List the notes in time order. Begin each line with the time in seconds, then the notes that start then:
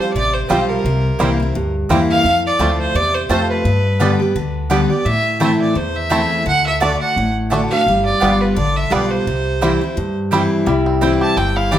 Already playing: F3 G3 C4 F4
0.00 C5
0.13 A1 C3 D5
0.33 C5
0.49 B1 F3 G3 C4 F4 C5 G5
0.69 A#4
0.85 C2 C3
1.19 C2 E3 G3 A#3 C4 E4 C5 G5
1.40 C4 E4
1.55 D2 G2
1.89 E2 E3 G3 A#3 C4 E4 C5 G5
2.10 F5
2.24 F2
2.46 D5
2.59 D2 F3 A3 C4 F4 C5 A5
2.80 C5
2.95 E2 C3 D5
3.14 C5
3.29 F2 F3 A3 C4 F4 C5 A5
3.50 B4
3.65 G2
4.00 D3 G3 B3 D4 G4 D5 G5
4.19 B3 G4
4.36 D2 D3
4.70 D3 G3 B3 D4 G4 D5 G5
4.90 B3 G4 D5
5.05 A2 E5
5.40 E3 A3 C4 E4 C5 E5 A5
5.61 D5
5.75 E2 C5
5.96 E5
6.10 E3 A3 C4 E4 C5 A5
6.46 D2 D3 F#5
6.67 E5
6.80 D3 A3 D4 F#4 D5 A5
7.01 F#5
7.16 A1 A2
7.50 D3 A3 D4 F#4 D5 A5
7.70 D4 F#4 F5
7.86 G1 G3
8.05 D5
8.20 G1 G3 B3 D4 F4 B4 G5
8.24 F4
8.41 B4
8.56 A1 D3 D5
8.76 E5
8.90 B1 G3 B3 D4 F4 B4 D5 G5
9.11 C5
9.27 C2 C3
9.61 E3 G3 C4 E4 C5 G5
9.81 C4 E4
9.97 G2
10.31 E3 G3 C4 E4 C5 G5
10.66 C2 C3 G3 E4
10.86 C4
11.01 E3 G3 C4 E4 C5 G5
11.21 G4 A5
11.36 G1 G2 C4 G5
11.56 E4 F5
11.71 E3 G3 C4 E4 C5 D5 G5